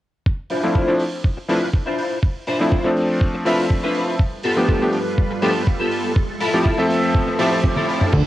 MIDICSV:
0, 0, Header, 1, 8, 480
1, 0, Start_track
1, 0, Tempo, 491803
1, 256, Time_signature, 4, 2, 24, 8
1, 8070, End_track
2, 0, Start_track
2, 0, Title_t, "String machine"
2, 0, Program_c, 0, 50
2, 4092, Note_on_c, 0, 69, 74
2, 4093, Note_on_c, 0, 55, 78
2, 4093, Note_on_c, 0, 71, 92
2, 4094, Note_on_c, 0, 65, 73
2, 5995, Note_off_c, 0, 55, 0
2, 5995, Note_off_c, 0, 71, 0
2, 5996, Note_off_c, 0, 65, 0
2, 6013, Note_on_c, 0, 53, 80
2, 6017, Note_on_c, 0, 76, 73
2, 7896, Note_off_c, 0, 69, 0
2, 7915, Note_off_c, 0, 53, 0
2, 7917, Note_off_c, 0, 76, 0
2, 7937, Note_on_c, 0, 72, 74
2, 7938, Note_on_c, 0, 76, 75
2, 7940, Note_on_c, 0, 62, 80
2, 8070, Note_off_c, 0, 62, 0
2, 8070, Note_off_c, 0, 72, 0
2, 8070, Note_off_c, 0, 76, 0
2, 8070, End_track
3, 0, Start_track
3, 0, Title_t, "Clean electric guitar"
3, 0, Program_c, 1, 27
3, 490, Note_on_c, 1, 64, 92
3, 495, Note_on_c, 1, 72, 103
3, 499, Note_on_c, 1, 65, 85
3, 502, Note_on_c, 1, 62, 88
3, 918, Note_off_c, 1, 62, 0
3, 918, Note_off_c, 1, 64, 0
3, 918, Note_off_c, 1, 65, 0
3, 918, Note_off_c, 1, 72, 0
3, 1450, Note_on_c, 1, 64, 89
3, 1455, Note_on_c, 1, 71, 104
3, 1458, Note_on_c, 1, 65, 80
3, 1462, Note_on_c, 1, 62, 95
3, 1637, Note_off_c, 1, 62, 0
3, 1637, Note_off_c, 1, 64, 0
3, 1638, Note_off_c, 1, 65, 0
3, 1638, Note_off_c, 1, 71, 0
3, 1816, Note_on_c, 1, 64, 74
3, 1822, Note_on_c, 1, 72, 79
3, 1824, Note_on_c, 1, 65, 71
3, 1828, Note_on_c, 1, 62, 63
3, 2118, Note_off_c, 1, 62, 0
3, 2118, Note_off_c, 1, 64, 0
3, 2118, Note_off_c, 1, 65, 0
3, 2119, Note_off_c, 1, 72, 0
3, 2412, Note_on_c, 1, 64, 85
3, 2416, Note_on_c, 1, 72, 109
3, 2421, Note_on_c, 1, 65, 84
3, 2423, Note_on_c, 1, 62, 90
3, 2839, Note_off_c, 1, 62, 0
3, 2839, Note_off_c, 1, 64, 0
3, 2839, Note_off_c, 1, 65, 0
3, 2839, Note_off_c, 1, 72, 0
3, 3371, Note_on_c, 1, 64, 95
3, 3378, Note_on_c, 1, 71, 107
3, 3380, Note_on_c, 1, 65, 91
3, 3384, Note_on_c, 1, 62, 80
3, 3558, Note_off_c, 1, 62, 0
3, 3558, Note_off_c, 1, 64, 0
3, 3558, Note_off_c, 1, 65, 0
3, 3559, Note_off_c, 1, 71, 0
3, 3739, Note_on_c, 1, 64, 68
3, 3743, Note_on_c, 1, 71, 81
3, 3748, Note_on_c, 1, 65, 68
3, 3752, Note_on_c, 1, 62, 67
3, 4039, Note_off_c, 1, 62, 0
3, 4039, Note_off_c, 1, 64, 0
3, 4039, Note_off_c, 1, 65, 0
3, 4040, Note_off_c, 1, 71, 0
3, 4336, Note_on_c, 1, 69, 123
3, 4338, Note_on_c, 1, 67, 91
3, 4343, Note_on_c, 1, 65, 89
3, 4345, Note_on_c, 1, 59, 86
3, 4759, Note_off_c, 1, 59, 0
3, 4759, Note_off_c, 1, 67, 0
3, 4760, Note_off_c, 1, 65, 0
3, 4760, Note_off_c, 1, 69, 0
3, 5293, Note_on_c, 1, 69, 108
3, 5297, Note_on_c, 1, 67, 88
3, 5300, Note_on_c, 1, 65, 82
3, 5305, Note_on_c, 1, 59, 93
3, 5478, Note_off_c, 1, 59, 0
3, 5478, Note_off_c, 1, 65, 0
3, 5478, Note_off_c, 1, 67, 0
3, 5479, Note_off_c, 1, 69, 0
3, 5659, Note_on_c, 1, 69, 88
3, 5662, Note_on_c, 1, 67, 74
3, 5664, Note_on_c, 1, 65, 70
3, 5670, Note_on_c, 1, 59, 66
3, 5958, Note_off_c, 1, 59, 0
3, 5958, Note_off_c, 1, 65, 0
3, 5959, Note_off_c, 1, 67, 0
3, 5959, Note_off_c, 1, 69, 0
3, 6249, Note_on_c, 1, 64, 100
3, 6255, Note_on_c, 1, 69, 110
3, 6260, Note_on_c, 1, 65, 84
3, 6676, Note_off_c, 1, 64, 0
3, 6677, Note_off_c, 1, 65, 0
3, 6677, Note_off_c, 1, 69, 0
3, 7209, Note_on_c, 1, 64, 113
3, 7217, Note_on_c, 1, 69, 109
3, 7218, Note_on_c, 1, 65, 89
3, 7397, Note_off_c, 1, 64, 0
3, 7397, Note_off_c, 1, 65, 0
3, 7398, Note_off_c, 1, 69, 0
3, 7577, Note_on_c, 1, 64, 83
3, 7583, Note_on_c, 1, 69, 74
3, 7589, Note_on_c, 1, 65, 62
3, 7878, Note_off_c, 1, 64, 0
3, 7878, Note_off_c, 1, 69, 0
3, 7879, Note_off_c, 1, 65, 0
3, 8070, End_track
4, 0, Start_track
4, 0, Title_t, "Electric grand piano"
4, 0, Program_c, 2, 2
4, 618, Note_on_c, 2, 53, 68
4, 621, Note_on_c, 2, 57, 59
4, 623, Note_on_c, 2, 60, 60
4, 626, Note_on_c, 2, 62, 64
4, 628, Note_on_c, 2, 64, 73
4, 830, Note_off_c, 2, 53, 0
4, 831, Note_off_c, 2, 57, 0
4, 832, Note_off_c, 2, 60, 0
4, 834, Note_off_c, 2, 62, 0
4, 834, Note_off_c, 2, 64, 0
4, 856, Note_on_c, 2, 53, 77
4, 858, Note_on_c, 2, 57, 64
4, 860, Note_on_c, 2, 60, 66
4, 862, Note_on_c, 2, 62, 71
4, 866, Note_on_c, 2, 64, 80
4, 977, Note_off_c, 2, 53, 0
4, 979, Note_off_c, 2, 57, 0
4, 980, Note_off_c, 2, 60, 0
4, 981, Note_off_c, 2, 62, 0
4, 982, Note_off_c, 2, 64, 0
4, 1451, Note_on_c, 2, 53, 72
4, 1453, Note_on_c, 2, 57, 68
4, 1456, Note_on_c, 2, 60, 67
4, 1458, Note_on_c, 2, 62, 67
4, 1462, Note_on_c, 2, 64, 79
4, 1534, Note_off_c, 2, 53, 0
4, 1535, Note_off_c, 2, 57, 0
4, 1537, Note_off_c, 2, 60, 0
4, 1538, Note_off_c, 2, 62, 0
4, 1540, Note_off_c, 2, 64, 0
4, 2536, Note_on_c, 2, 53, 71
4, 2540, Note_on_c, 2, 57, 68
4, 2542, Note_on_c, 2, 60, 69
4, 2544, Note_on_c, 2, 62, 68
4, 2546, Note_on_c, 2, 64, 81
4, 2658, Note_off_c, 2, 53, 0
4, 2660, Note_off_c, 2, 57, 0
4, 2661, Note_off_c, 2, 60, 0
4, 2662, Note_off_c, 2, 62, 0
4, 2663, Note_off_c, 2, 64, 0
4, 2774, Note_on_c, 2, 53, 83
4, 2780, Note_on_c, 2, 57, 80
4, 2784, Note_on_c, 2, 60, 76
4, 2789, Note_on_c, 2, 62, 77
4, 3345, Note_off_c, 2, 53, 0
4, 3348, Note_off_c, 2, 57, 0
4, 3350, Note_off_c, 2, 60, 0
4, 3352, Note_off_c, 2, 62, 0
4, 3369, Note_on_c, 2, 53, 71
4, 3374, Note_on_c, 2, 57, 62
4, 3380, Note_on_c, 2, 60, 65
4, 3385, Note_on_c, 2, 62, 63
4, 3389, Note_on_c, 2, 76, 78
4, 4079, Note_off_c, 2, 53, 0
4, 4081, Note_off_c, 2, 57, 0
4, 4084, Note_off_c, 2, 60, 0
4, 4087, Note_off_c, 2, 62, 0
4, 4089, Note_off_c, 2, 76, 0
4, 4457, Note_on_c, 2, 53, 69
4, 4459, Note_on_c, 2, 57, 64
4, 4462, Note_on_c, 2, 59, 63
4, 4464, Note_on_c, 2, 62, 61
4, 4466, Note_on_c, 2, 67, 77
4, 4669, Note_off_c, 2, 53, 0
4, 4670, Note_off_c, 2, 57, 0
4, 4672, Note_off_c, 2, 59, 0
4, 4673, Note_off_c, 2, 62, 0
4, 4674, Note_off_c, 2, 67, 0
4, 4700, Note_on_c, 2, 53, 75
4, 4703, Note_on_c, 2, 57, 68
4, 4704, Note_on_c, 2, 59, 67
4, 4706, Note_on_c, 2, 62, 68
4, 4708, Note_on_c, 2, 67, 84
4, 4819, Note_off_c, 2, 53, 0
4, 4821, Note_off_c, 2, 57, 0
4, 4821, Note_off_c, 2, 59, 0
4, 4823, Note_off_c, 2, 62, 0
4, 4823, Note_off_c, 2, 67, 0
4, 5291, Note_on_c, 2, 53, 73
4, 5293, Note_on_c, 2, 57, 69
4, 5294, Note_on_c, 2, 59, 70
4, 5297, Note_on_c, 2, 62, 69
4, 5301, Note_on_c, 2, 67, 85
4, 5374, Note_off_c, 2, 53, 0
4, 5375, Note_off_c, 2, 57, 0
4, 5376, Note_off_c, 2, 59, 0
4, 5378, Note_off_c, 2, 62, 0
4, 5379, Note_off_c, 2, 67, 0
4, 6378, Note_on_c, 2, 53, 77
4, 6380, Note_on_c, 2, 57, 73
4, 6383, Note_on_c, 2, 60, 70
4, 6385, Note_on_c, 2, 64, 71
4, 6388, Note_on_c, 2, 67, 85
4, 6498, Note_off_c, 2, 53, 0
4, 6499, Note_off_c, 2, 57, 0
4, 6501, Note_off_c, 2, 60, 0
4, 6502, Note_off_c, 2, 64, 0
4, 6503, Note_off_c, 2, 67, 0
4, 6612, Note_on_c, 2, 53, 86
4, 6617, Note_on_c, 2, 57, 78
4, 6622, Note_on_c, 2, 60, 80
4, 6625, Note_on_c, 2, 76, 81
4, 6631, Note_on_c, 2, 69, 98
4, 7184, Note_off_c, 2, 53, 0
4, 7186, Note_off_c, 2, 57, 0
4, 7189, Note_off_c, 2, 60, 0
4, 7191, Note_off_c, 2, 76, 0
4, 7193, Note_off_c, 2, 69, 0
4, 7208, Note_on_c, 2, 53, 73
4, 7213, Note_on_c, 2, 57, 62
4, 7219, Note_on_c, 2, 60, 66
4, 7223, Note_on_c, 2, 76, 64
4, 7229, Note_on_c, 2, 67, 75
4, 7918, Note_off_c, 2, 53, 0
4, 7921, Note_off_c, 2, 57, 0
4, 7924, Note_off_c, 2, 60, 0
4, 7926, Note_off_c, 2, 76, 0
4, 7929, Note_off_c, 2, 67, 0
4, 8070, End_track
5, 0, Start_track
5, 0, Title_t, "Analog synth bass"
5, 0, Program_c, 3, 38
5, 7934, Note_on_c, 3, 38, 92
5, 8029, Note_off_c, 3, 38, 0
5, 8070, End_track
6, 0, Start_track
6, 0, Title_t, "Riser"
6, 0, Program_c, 4, 103
6, 4095, Note_on_c, 4, 60, 70
6, 7936, Note_off_c, 4, 60, 0
6, 8070, End_track
7, 0, Start_track
7, 0, Title_t, "Muted clean electric guitar strokes"
7, 1339, Note_on_c, 9, 29, 69
7, 1436, Note_off_c, 9, 29, 0
7, 3260, Note_on_c, 9, 29, 75
7, 3358, Note_off_c, 9, 29, 0
7, 5180, Note_on_c, 9, 29, 84
7, 5277, Note_off_c, 9, 29, 0
7, 7098, Note_on_c, 9, 29, 80
7, 7196, Note_off_c, 9, 29, 0
7, 8070, End_track
8, 0, Start_track
8, 0, Title_t, "Drums"
8, 253, Note_on_c, 9, 36, 102
8, 351, Note_off_c, 9, 36, 0
8, 485, Note_on_c, 9, 46, 96
8, 583, Note_off_c, 9, 46, 0
8, 733, Note_on_c, 9, 36, 97
8, 831, Note_off_c, 9, 36, 0
8, 970, Note_on_c, 9, 46, 82
8, 1068, Note_off_c, 9, 46, 0
8, 1214, Note_on_c, 9, 36, 106
8, 1312, Note_off_c, 9, 36, 0
8, 1458, Note_on_c, 9, 46, 101
8, 1556, Note_off_c, 9, 46, 0
8, 1694, Note_on_c, 9, 36, 102
8, 1792, Note_off_c, 9, 36, 0
8, 1937, Note_on_c, 9, 46, 91
8, 2035, Note_off_c, 9, 46, 0
8, 2175, Note_on_c, 9, 36, 112
8, 2272, Note_off_c, 9, 36, 0
8, 2412, Note_on_c, 9, 46, 92
8, 2509, Note_off_c, 9, 46, 0
8, 2655, Note_on_c, 9, 36, 107
8, 2753, Note_off_c, 9, 36, 0
8, 2896, Note_on_c, 9, 46, 85
8, 2994, Note_off_c, 9, 46, 0
8, 3135, Note_on_c, 9, 36, 112
8, 3233, Note_off_c, 9, 36, 0
8, 3376, Note_on_c, 9, 46, 106
8, 3473, Note_off_c, 9, 46, 0
8, 3615, Note_on_c, 9, 36, 105
8, 3713, Note_off_c, 9, 36, 0
8, 3851, Note_on_c, 9, 46, 84
8, 3949, Note_off_c, 9, 46, 0
8, 4095, Note_on_c, 9, 36, 117
8, 4192, Note_off_c, 9, 36, 0
8, 4328, Note_on_c, 9, 46, 94
8, 4426, Note_off_c, 9, 46, 0
8, 4575, Note_on_c, 9, 36, 106
8, 4672, Note_off_c, 9, 36, 0
8, 4808, Note_on_c, 9, 46, 86
8, 4905, Note_off_c, 9, 46, 0
8, 5055, Note_on_c, 9, 36, 108
8, 5152, Note_off_c, 9, 36, 0
8, 5289, Note_on_c, 9, 46, 107
8, 5387, Note_off_c, 9, 46, 0
8, 5534, Note_on_c, 9, 36, 106
8, 5632, Note_off_c, 9, 36, 0
8, 5770, Note_on_c, 9, 46, 85
8, 5868, Note_off_c, 9, 46, 0
8, 6014, Note_on_c, 9, 36, 121
8, 6111, Note_off_c, 9, 36, 0
8, 6250, Note_on_c, 9, 46, 108
8, 6348, Note_off_c, 9, 46, 0
8, 6494, Note_on_c, 9, 36, 108
8, 6591, Note_off_c, 9, 36, 0
8, 6734, Note_on_c, 9, 46, 95
8, 6832, Note_off_c, 9, 46, 0
8, 6974, Note_on_c, 9, 36, 112
8, 7071, Note_off_c, 9, 36, 0
8, 7213, Note_on_c, 9, 46, 117
8, 7311, Note_off_c, 9, 46, 0
8, 7454, Note_on_c, 9, 36, 111
8, 7458, Note_on_c, 9, 48, 56
8, 7552, Note_off_c, 9, 36, 0
8, 7556, Note_off_c, 9, 48, 0
8, 7578, Note_on_c, 9, 48, 60
8, 7676, Note_off_c, 9, 48, 0
8, 7700, Note_on_c, 9, 46, 86
8, 7797, Note_off_c, 9, 46, 0
8, 7819, Note_on_c, 9, 45, 80
8, 7917, Note_off_c, 9, 45, 0
8, 7928, Note_on_c, 9, 49, 91
8, 7934, Note_on_c, 9, 36, 116
8, 8026, Note_off_c, 9, 49, 0
8, 8032, Note_off_c, 9, 36, 0
8, 8070, End_track
0, 0, End_of_file